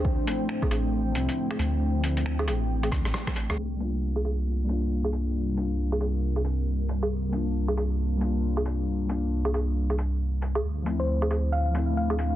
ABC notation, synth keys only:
X:1
M:4/4
L:1/8
Q:"Swing 16ths" 1/4=136
K:Cmix
V:1 name="Synth keys"
z [F,A,CE]4 [F,A,CE]3- | [F,A,CE] [F,A,CE]4 z3 | z [G,B,DF]4 [G,B,DF]3- | [G,B,DF] [G,B,DF]4 z3 |
z [G,B,DF]4 [G,B,DF]3- | [G,B,DF] [G,B,DF]4 z3 | z [F,A,CE]4 [F,A,CE]3 |]